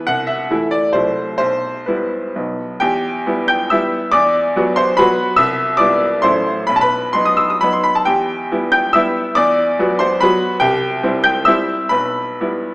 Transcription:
0.07 0.49 C2 medium
0.07 0.28 F#5 loud
0.27 0.72 E5 medium
0.50 0.91 E3 medium
0.50 0.91 A3 medium
0.50 0.92 E4 medium
0.71 0.94 D5 medium
0.93 1.38 C2 medium
0.93 1.36 F#3 soft
0.93 1.36 A3 soft
0.93 1.36 E4 soft
0.93 1.36 C5 medium
1.38 1.86 B1 medium
1.38 1.87 C5 medium
1.86 2.32 G3 soft
1.86 2.32 B3 medium
1.86 2.32 E4 medium
1.86 2.58 B4 medium
2.36 2.80 B1 medium
2.36 2.77 F#3 soft
2.36 2.77 B3 soft
2.36 2.78 D#4 soft
2.80 3.25 E2 medium
2.80 3.45 G4 medium
2.80 3.48 G5 loud
3.26 3.68 G3 medium
3.26 3.68 B3 medium
3.26 3.68 E4 medium
3.48 3.70 G5 medium
3.48 3.71 G6 loud
3.70 4.09 G3 medium
3.70 4.09 B3 medium
3.70 4.10 E4 medium
3.70 4.10 E5 medium
3.70 4.13 E6 medium
4.12 4.54 E2 medium
4.12 4.73 D5 medium
4.12 4.77 D6 loud
4.56 4.94 F#3 medium
4.56 4.95 B3 medium
4.56 4.95 F#4 medium
4.76 4.97 C5 medium
4.76 4.98 C6 loud
4.97 5.34 F#3 medium
4.97 5.34 B3 medium
4.97 5.34 F#4 medium
4.97 5.35 B4 medium
4.97 5.37 B5 loud
5.36 5.78 C2 medium
5.36 5.76 E5 medium
5.36 5.78 E6 loud
5.77 6.20 G3 medium
5.77 6.20 B3 medium
5.77 6.20 E4 medium
5.77 6.20 D5 medium
5.77 6.23 D6 loud
6.22 6.67 A1 medium
6.22 6.64 F#3 soft
6.22 6.65 A3 medium
6.22 6.65 E4 medium
6.22 6.65 C5 medium
6.22 6.68 C6 medium
6.67 7.14 B1 medium
6.67 6.75 B5 medium
6.76 6.83 A5 medium
6.81 7.12 B4 medium
6.81 7.14 B5 loud
7.13 7.58 F#3 medium
7.13 7.59 B3 medium
7.13 7.59 D#4 medium
7.13 7.26 C6 medium
7.25 7.38 D#6 loud
7.37 7.50 E6 medium
7.50 7.62 D#6 medium
7.61 8.03 F#3 medium
7.61 8.03 B3 medium
7.61 8.03 D#4 medium
7.61 7.73 B5 loud
7.73 7.85 C6 medium
7.84 7.96 B5 medium
7.95 8.07 A5 medium
8.05 8.49 E2 medium
8.05 8.69 G4 medium
8.05 8.71 G5 loud
8.52 8.92 G3 soft
8.52 8.92 B3 medium
8.52 8.92 E4 medium
8.72 8.94 G5 medium
8.72 8.95 G6 loud
8.93 9.33 G3 medium
8.93 9.33 B3 medium
8.93 9.33 E4 medium
8.93 9.34 E5 medium
8.93 9.36 E6 loud
9.35 9.78 E2 medium
9.35 9.97 D5 medium
9.35 10.01 D6 loud
9.79 10.18 F#3 medium
9.79 10.18 B3 medium
9.79 10.19 F#4 medium
9.99 10.20 C5 medium
9.99 10.21 C6 loud
10.21 10.58 F#3 medium
10.21 10.58 B3 medium
10.21 10.59 F#4 medium
10.21 10.59 B4 medium
10.21 10.61 B5 loud
10.60 11.02 C2 medium
10.60 11.21 G4 medium
10.60 11.24 G5 loud
11.03 11.43 G3 medium
11.03 11.43 C4 medium
11.03 11.43 E4 medium
11.24 11.45 G5 medium
11.24 11.46 G6 loud
11.45 11.87 G3 medium
11.45 11.87 C4 medium
11.45 11.88 E4 medium
11.45 11.88 E5 medium
11.45 11.90 E6 loud
11.89 12.38 B1 medium
11.89 12.74 B4 medium
11.89 12.74 B5 medium
12.40 12.74 G3 medium
12.40 12.74 B3 medium
12.40 12.74 E4 medium

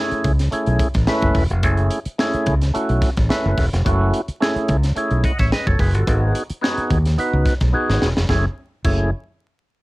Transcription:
0.00 0.32 A3 loud
0.00 0.32 C#4 medium
0.00 0.32 E4 medium
0.00 0.33 G#4 loud
0.11 muted fingered electric bass stroke soft
0.11 closed hi-hat soft
0.24 0.49 C#2 medium
0.24 kick loud
0.24 closed hi-hat medium
0.39 snare soft
0.39 closed hi-hat medium
0.51 0.87 A3 medium
0.51 0.88 C#4 medium
0.51 0.88 E4 medium
0.51 0.89 G#4 medium
0.51 muted fingered electric bass stroke soft
0.51 closed hi-hat medium
0.66 0.79 B1 medium
0.66 closed hi-hat soft
0.79 kick medium
0.79 closed hi-hat medium
0.94 1.06 A1 medium
0.94 kick medium
0.94 snare soft
0.94 closed hi-hat soft
1.07 1.43 A3 medium
1.07 1.43 C#4 loud
1.07 1.44 E4 medium
1.07 1.44 B4 loud
1.07 snare loud
1.22 1.34 F#1 medium
1.22 kick medium
1.22 closed hi-hat soft
1.35 1.48 E1 medium
1.35 kick medium
1.35 open hi-hat medium
1.50 1.64 F1 medium
1.50 closed hi-hat medium
1.63 1.88 F#1 loud
1.63 1.99 A3 medium
1.63 1.99 C#4 medium
1.63 1.99 E4 medium
1.63 2.00 G#4 medium
1.63 kick loud
1.63 closed hi-hat loud
1.77 closed hi-hat soft
1.90 closed hi-hat medium
2.05 muted fingered electric bass stroke medium
2.05 closed hi-hat soft
2.18 2.54 A3 medium
2.18 2.55 C#4 medium
2.18 2.55 E4 medium
2.18 2.55 G#4 loud
2.18 snare loud
2.33 muted fingered electric bass stroke soft
2.33 closed hi-hat soft
2.46 2.71 C#2 medium
2.46 kick loud
2.46 closed hi-hat medium
2.61 snare soft
2.61 closed hi-hat medium
2.74 3.10 A3 medium
2.74 3.10 C#4 medium
2.74 3.10 E4 medium
2.74 3.11 F#4 medium
2.74 muted fingered electric bass stroke medium
2.74 closed hi-hat medium
2.89 3.01 B1 medium
2.89 closed hi-hat soft
3.02 kick medium
3.02 snare soft
3.02 closed hi-hat medium
3.17 3.29 A1 medium
3.17 kick medium
3.17 snare soft
3.17 closed hi-hat soft
3.29 3.65 A3 loud
3.29 3.65 C#4 medium
3.29 3.66 E4 medium
3.29 3.66 B4 loud
3.29 snare loud
3.45 3.57 F#1 medium
3.58 3.71 E1 medium
3.58 kick medium
3.58 snare soft
3.58 open hi-hat medium
3.73 3.84 F1 medium
3.73 snare soft
3.73 closed hi-hat medium
3.85 4.10 F#1 loud
3.85 4.21 A3 medium
3.85 4.21 C#4 medium
3.85 4.21 E4 medium
3.85 4.22 F#4 medium
3.85 kick loud
3.85 closed hi-hat loud
4.13 closed hi-hat medium
4.28 muted fingered electric bass stroke medium
4.28 closed hi-hat soft
4.40 4.76 A3 medium
4.40 4.77 C#4 medium
4.40 4.77 E4 medium
4.40 4.77 G#4 loud
4.40 snare loud
4.56 muted fingered electric bass stroke soft
4.56 closed hi-hat soft
4.68 4.93 C#2 medium
4.68 kick medium
4.68 closed hi-hat medium
4.83 snare soft
4.83 closed hi-hat medium
4.96 5.32 A3 medium
4.96 5.32 C#4 medium
4.96 5.32 E4 medium
4.96 5.25 G#4 medium
4.96 muted fingered electric bass stroke soft
4.96 closed hi-hat medium
5.11 5.23 B1 medium
5.11 closed hi-hat soft
5.24 5.38 D#5 medium
5.24 5.38 F#5 medium
5.24 kick medium
5.24 closed hi-hat medium
5.39 5.51 A1 medium
5.39 5.51 C#5 medium
5.39 5.51 E5 medium
5.39 kick medium
5.39 snare soft
5.39 closed hi-hat soft
5.52 5.66 B4 medium
5.52 5.66 D#5 medium
5.52 snare loud
5.66 5.78 F#1 loud
5.66 5.79 A4 medium
5.66 5.79 C#5 medium
5.66 kick loud
5.79 5.94 F#1 medium
5.79 5.94 G#4 medium
5.79 5.94 B4 medium
5.79 kick medium
5.79 open hi-hat medium
5.94 6.06 G1 medium
5.94 6.07 F#4 medium
5.94 6.21 A4 medium
5.94 closed hi-hat medium
6.06 6.32 G#1 loud
6.06 6.42 B3 medium
6.06 6.43 D#4 medium
6.06 6.43 F#4 medium
6.06 6.44 G#4 medium
6.06 kick loud
6.06 closed hi-hat medium
6.35 closed hi-hat medium
6.50 muted fingered electric bass stroke medium
6.50 closed hi-hat soft
6.61 6.98 B3 medium
6.61 6.98 D#4 medium
6.61 6.98 F#4 medium
6.61 6.99 G#4 loud
6.61 snare loud
6.78 muted fingered electric bass stroke soft
6.78 closed hi-hat soft
6.91 7.15 D#2 medium
6.91 kick medium
6.91 closed hi-hat medium
7.06 snare soft
7.06 closed hi-hat medium
7.18 7.54 B3 medium
7.18 7.54 D#4 medium
7.18 7.54 F#4 medium
7.18 7.55 B4 medium
7.18 muted fingered electric bass stroke soft
7.18 closed hi-hat medium
7.33 7.45 C#2 medium
7.46 kick medium
7.46 snare soft
7.46 closed hi-hat medium
7.61 7.73 B1 medium
7.61 kick medium
7.61 snare soft
7.61 closed hi-hat soft
7.73 8.09 B3 medium
7.73 8.09 D#4 medium
7.73 8.10 F#4 medium
7.73 8.10 G#4 loud
7.90 8.01 G#1 loud
7.90 snare medium
8.02 8.15 E1 medium
8.02 snare medium
8.17 8.29 F1 medium
8.17 snare medium
8.29 8.45 F#1 medium
8.29 8.45 A3 medium
8.29 8.46 C#4 medium
8.29 8.46 E4 medium
8.29 8.46 G#4 medium
8.29 kick medium
8.29 snare medium
8.84 9.10 F#1 medium
8.84 9.10 A3 medium
8.84 9.11 C#4 medium
8.84 9.11 E4 medium
8.84 9.11 G#4 medium
8.84 kick loud
8.84 crash medium

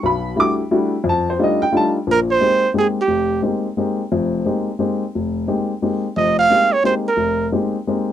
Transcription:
0.03 0.33 B1 medium
0.03 0.33 B2 medium
0.03 0.36 B5 medium
0.36 0.60 G3 medium
0.36 0.60 A3 medium
0.36 0.60 D4 medium
0.36 0.60 E4 medium
0.36 0.60 F#4 medium
0.36 0.52 D6 loud
0.71 0.94 G3 medium
0.71 0.94 A3 medium
0.71 0.95 D4 medium
0.71 0.94 E4 medium
0.71 0.95 F#4 medium
1.04 1.34 F2 medium
1.09 1.29 A5 medium
1.30 1.40 C5 medium
1.39 1.62 G3 medium
1.39 1.62 A3 medium
1.39 1.62 D4 medium
1.39 1.62 D#4 medium
1.39 1.63 F4 medium
1.44 1.63 D#5 loud
1.62 1.73 G5 loud
1.72 1.96 G3 medium
1.72 1.96 A3 medium
1.72 1.96 D4 medium
1.72 1.96 D#4 medium
1.72 1.96 F4 medium
1.77 1.89 A5 loud
2.07 2.37 A#1 medium
2.07 2.37 A#2 medium
2.11 2.20 A#4 medium
2.31 2.73 C5 loud
2.41 2.64 G#3 soft
2.41 2.64 A#3 soft
2.41 2.64 C4 soft
2.41 2.64 D#4 soft
2.41 2.65 G4 medium
2.74 2.98 G#3 medium
2.74 2.98 A#3 soft
2.74 2.98 C4 soft
2.74 2.98 D#4 soft
2.74 2.98 G4 medium
2.78 2.88 G#4 medium
3.01 3.42 G4 medium
3.08 3.38 F1 medium
3.42 3.66 G#3 soft
3.42 3.66 A#3 soft
3.42 3.66 C4 soft
3.42 3.66 D#4 soft
3.42 3.66 G4 medium
3.77 4.00 G#3 medium
3.77 4.00 A#3 soft
3.77 4.01 C4 soft
3.77 4.01 D#4 soft
3.77 4.01 G4 medium
4.12 4.41 F1 medium
4.12 4.41 F2 medium
4.45 4.69 G#3 soft
4.45 4.68 A#3 soft
4.45 4.68 C4 soft
4.45 4.69 D#4 soft
4.45 4.69 G4 medium
4.79 5.02 G#3 medium
4.79 5.02 A#3 soft
4.79 5.03 C4 soft
4.79 5.02 D#4 soft
4.79 5.03 G4 medium
5.15 5.44 F1 medium
5.47 5.71 G#3 medium
5.47 5.71 A#3 soft
5.47 5.70 C4 soft
5.47 5.71 D#4 soft
5.47 5.71 G4 medium
5.82 6.05 G#3 medium
5.82 6.05 A#3 soft
5.82 6.05 C4 soft
5.82 6.05 D#4 soft
5.82 6.05 G4 medium
6.17 6.45 F1 medium
6.17 6.45 F2 medium
6.17 6.36 D#5 medium
6.39 6.74 F5 loud
6.50 6.73 G#3 soft
6.50 6.73 A#3 soft
6.50 6.73 C4 soft
6.50 6.73 D#4 soft
6.50 6.73 G4 medium
6.73 6.84 C#5 medium
6.83 7.06 G#3 soft
6.83 7.06 A#3 soft
6.83 7.07 C4 soft
6.83 7.07 D#4 soft
6.83 7.07 G4 medium
6.83 6.95 C5 medium
7.08 7.49 A#4 medium
7.17 7.46 F1 medium
7.52 7.75 G#3 medium
7.52 7.75 A#3 soft
7.52 7.75 C4 soft
7.52 7.75 D#4 soft
7.52 7.75 G4 medium
7.87 8.09 G#3 medium
7.87 8.09 A#3 soft
7.87 8.10 C4 soft
7.87 8.10 D#4 soft
7.87 8.10 G4 medium

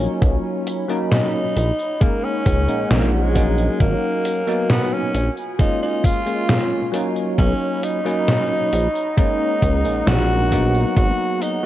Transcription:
0.00 0.83 F#3 loud
0.00 0.84 A#3 medium
0.00 0.84 C#4 medium
0.00 0.85 D#4 loud
0.00 0.20 F4 medium
0.00 1.53 C#5 medium
0.00 0.18 G#5 medium
0.00 7.34 A#5 medium
0.00 tambourine soft
0.22 0.37 B1 loud
0.22 1.55 D#4 medium
0.22 1.55 B5 medium
0.22 kick loud
0.22 closed hi-hat medium
0.22 tambourine soft
0.67 closed hi-hat medium
0.67 tambourine medium
0.88 1.53 F#3 loud
0.88 1.54 A#3 medium
0.88 1.54 C#4 medium
0.88 1.54 D#4 loud
0.88 tambourine soft
1.11 2.03 D#4 loud
1.11 snare loud
1.11 closed hi-hat medium
1.11 tambourine soft
1.56 1.72 A#1 medium
1.56 3.78 D#4 medium
1.56 3.78 C#5 medium
1.56 3.78 F#5 medium
1.56 closed hi-hat medium
1.56 tambourine medium
1.79 tambourine soft
2.00 2.63 G#3 medium
2.00 2.63 A#3 medium
2.00 2.26 A#3 medium
2.00 2.63 C#4 medium
2.00 2.63 D#4 loud
2.00 kick loud
2.00 closed hi-hat medium
2.00 tambourine soft
2.24 2.91 C#4 loud
2.46 2.68 C#2 medium
2.46 kick loud
2.46 closed hi-hat medium
2.46 tambourine medium
2.67 2.86 A#1 soft
2.67 3.30 G#3 medium
2.67 3.30 A#3 medium
2.67 3.30 C#4 medium
2.67 3.30 D#4 medium
2.67 tambourine soft
2.91 3.69 A#1 loud
2.91 3.12 A#3 medium
2.91 snare loud
2.91 closed hi-hat medium
2.91 tambourine soft
3.14 3.77 G#3 loud
3.34 4.41 F#3 medium
3.34 4.42 A#3 medium
3.34 4.42 C#4 medium
3.34 4.43 D#4 loud
3.34 kick medium
3.34 closed hi-hat medium
3.34 tambourine medium
3.58 tambourine soft
3.80 3.95 G#1 loud
3.80 4.66 A#3 loud
3.80 5.13 F#4 medium
3.80 7.35 G#5 medium
3.80 kick loud
3.80 closed hi-hat medium
3.80 tambourine soft
4.25 closed hi-hat medium
4.25 tambourine medium
4.47 5.12 F#3 loud
4.47 5.12 A#3 medium
4.47 5.12 B3 medium
4.47 5.12 D#4 loud
4.47 tambourine soft
4.70 4.94 B3 loud
4.70 snare loud
4.70 closed hi-hat medium
4.70 tambourine soft
4.93 5.33 C#4 loud
5.14 5.30 A#1 medium
5.14 7.36 F4 medium
5.14 10.93 C#5 medium
5.14 closed hi-hat medium
5.14 tambourine medium
5.37 tambourine soft
5.59 6.21 G#3 medium
5.59 6.21 A#3 medium
5.59 6.21 C#4 medium
5.59 5.81 D#4 loud
5.59 6.22 F4 loud
5.59 kick loud
5.59 closed hi-hat medium
5.59 tambourine soft
5.82 6.06 D#4 loud
6.04 6.94 F4 loud
6.04 kick loud
6.04 closed hi-hat medium
6.04 tambourine medium
6.26 6.88 G#3 medium
6.26 6.88 A#3 medium
6.26 6.88 C#4 medium
6.26 6.89 F4 medium
6.26 tambourine soft
6.49 snare loud
6.49 closed hi-hat medium
6.49 tambourine soft
6.92 7.99 F#3 loud
6.92 8.00 A#3 medium
6.92 8.00 C#4 medium
6.92 8.01 D#4 loud
6.92 closed hi-hat medium
6.92 tambourine medium
7.16 tambourine soft
7.38 7.53 B1 loud
7.38 7.85 C#4 loud
7.38 10.93 D#4 medium
7.38 10.93 A#5 medium
7.38 8.71 B5 medium
7.38 kick loud
7.38 closed hi-hat medium
7.38 tambourine soft
7.83 9.18 D#4 loud
7.83 closed hi-hat medium
7.83 tambourine medium
8.05 8.70 F#3 loud
8.05 8.70 A#3 medium
8.05 8.70 C#4 medium
8.05 8.70 D#4 loud
8.05 tambourine soft
8.28 snare loud
8.28 closed hi-hat medium
8.28 tambourine soft
8.72 8.88 A#1 medium
8.72 11.66 F#5 medium
8.72 closed hi-hat medium
8.72 tambourine medium
8.95 tambourine soft
9.17 9.79 G#3 loud
9.17 9.79 A#3 medium
9.17 9.79 C#4 medium
9.17 10.03 D#4 loud
9.17 9.80 D#4 loud
9.17 kick loud
9.17 closed hi-hat medium
9.17 tambourine soft
9.62 9.84 C#2 medium
9.62 kick loud
9.62 closed hi-hat medium
9.62 tambourine medium
9.84 10.03 A#1 soft
9.84 10.46 G#3 medium
9.84 10.46 A#3 medium
9.84 10.47 C#4 medium
9.84 10.47 D#4 medium
9.84 tambourine soft
10.07 10.85 A#1 loud
10.07 10.93 F#4 loud
10.07 snare loud
10.07 closed hi-hat medium
10.07 tambourine soft
10.50 11.58 F#3 loud
10.50 11.58 A#3 medium
10.50 11.59 B3 medium
10.50 11.59 D#4 loud
10.50 kick medium
10.50 closed hi-hat medium
10.50 tambourine medium
10.75 tambourine soft
10.96 11.12 G#1 loud
10.96 11.43 F#4 loud
10.96 11.66 G#4 medium
10.96 11.66 A#5 medium
10.96 kick loud
10.96 closed hi-hat medium
10.96 tambourine soft
11.42 11.66 D#4 loud
11.42 closed hi-hat medium
11.42 tambourine medium

